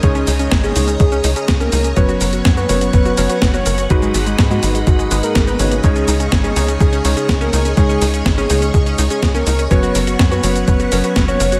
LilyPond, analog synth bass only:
\new Staff \with { instrumentName = "Analog synth bass" } { \clef bass \time 4/4 \key fis \mixolydian \tempo 4 = 124 cis,8 cis,8 gis,,8 cis,8 cis,8 cis,8 cis,8 cis,8 | fis,,8 fis,,8 fis,8 fis,,8 fis,,8 fis,,8 fis,,8 fis,,8 | gis,,8 gis,,8 gis,8 gis,,8 gis,,8 gis,,8 gis,,8 gis,,8 | cis,8 cis,8 gis,,8 cis,8 cis,8 cis,8 cis,8 cis,8 |
cis,8 cis,8 gis,,8 cis,8 cis,8 cis,8 cis,8 cis,8 | fis,,8 fis,,8 fis,8 fis,,8 fis,,8 fis,,8 fis,,8 fis,,8 | }